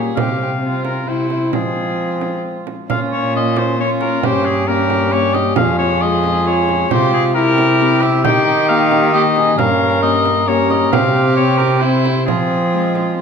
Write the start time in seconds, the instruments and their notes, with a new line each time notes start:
Already playing: cello A#2, harp A#2 G3 A#3 C#4 G4, trombone A#3, violin G#4
0.15 cello C3, harp C3 C4 G4, trombone C4, violin G4, oboe F5, frame drum
0.42 violin G4
0.62 trombone C4, violin F4
0.85 oboe A#4, frame drum
1.05 harp C3 C4 E4, cello C3, violin E4, trombone E4, oboe C5
1.30 trombone E4, frame drum
1.50 harp G#3 C4 F4, trombone C4, violin F4, oboe G#4, frame drum
1.54 cello F3, harp F3
2.21 frame drum
2.67 frame drum
2.89 cello A#2, harp A#2, trombone C#4, violin F4, oboe F5, frame drum
3.13 oboe C#5
3.35 harp A#3 C#4 F4, oboe D#5
3.56 oboe C5, frame drum
3.79 harp A#3 C#4 F4, trombone C#4, violin F4, oboe C#5
4.01 oboe A#4, frame drum
4.23 harp G2, cello G2, trombone C#4, violin G4, oboe C5, frame drum
4.45 oboe G#4
4.68 harp A#3 C#4 G4, trombone C#4, violin G4, oboe A#4
4.90 frame drum
5.12 harp A#3 C#4 G4, oboe C#5
5.34 oboe D#5, frame drum
5.56 cello F2, harp F2, trombone F4, violin G#4, oboe F5, frame drum
5.79 oboe C#5
6.02 harp G#3 F4 G#4, oboe D#5
6.24 frame drum
6.47 harp F4 G#4, oboe C#5
6.69 frame drum
6.91 harp C3 C4 F4 G4, cello C3, trombone F4, violin G4, oboe C5, frame drum
7.13 oboe G#4
7.35 trombone E4, violin G4, oboe A#4
7.58 frame drum
7.81 harp C4 E4 G4
8.02 oboe E5, frame drum
8.24 harp D#3, cello D#3, trombone D#4, violin G4, oboe G5, frame drum
8.69 harp A#3 D#4 G4, oboe F5
8.92 frame drum
9.13 harp A#3 D#4 G4, trombone D#4, violin G4, oboe D#5
9.36 violin G#4, frame drum
9.58 harp G2, cello G2, trombone C#4, violin A#4, oboe F5, frame drum
10.02 harp A#3 C#4 G4, oboe D#5
10.25 frame drum
10.48 harp A#3 C#4 G4, trombone C#4, violin A#4, oboe C#5
10.70 oboe D#5, frame drum
10.92 harp C3, cello C3, trombone C4, violin G4, oboe F5, frame drum
11.37 harp C4 G4, oboe C#5
11.58 oboe A#4, frame drum
11.80 trombone C4, harp C4 E4, violin E4, oboe C5
12.05 frame drum
12.26 harp F3, cello F3, trombone C4, violin F4, oboe G#4, frame drum
12.73 harp G#3 C4 F4
12.95 frame drum
13.18 harp G#3